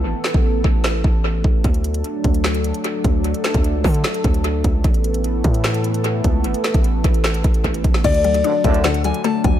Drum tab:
CC |----------------|----------------|----------------|----------------|
HH |----------------|xxxxx-xxxxxxx-x-|xxxxx-oxxxxxx-x-|xxxxx-xxxxxxx-x-|
CP |--x-----x-------|--------x-------|--x-----x-------|--------x-------|
SD |--o-----o-------|--------o-------|--o-----o-------|--------o-------|
BD |---o--o---o---o-|o-----o-------o-|---o--o---o---o-|o-----o-------o-|

CC |----------------|x---------------|
HH |xxxxx-xxxxxxxxx-|xxxxx-xxxxxxx-x-|
CP |--x-----x-------|--------x-------|
SD |--o-----o------o|--------o-------|
BD |---o--o---o-o-o-|o-----o-------o-|